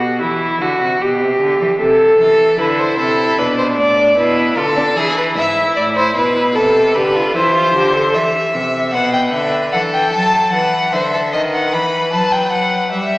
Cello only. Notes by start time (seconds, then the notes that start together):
Already playing: B2
0.22 E3
0.61 D3
0.81 C3
1.01 B2
1.21 C3
1.40 D3
1.61 E3
1.80 C3
2.20 E3
2.60 D3
2.99 C3
3.39 B2
3.78 A2
4.18 B2
4.57 D3
4.97 E3
5.37 G#2
5.76 A2
6.16 B2
6.56 C3
6.96 D3
7.35 E3
7.75 D3
8.15 E3
8.54 C3
8.94 B2
9.34 D3
9.74 E3
10.14 F#3
10.53 E3
10.93 D3
11.33 D#3
11.73 E3
12.13 F#3
12.93 G3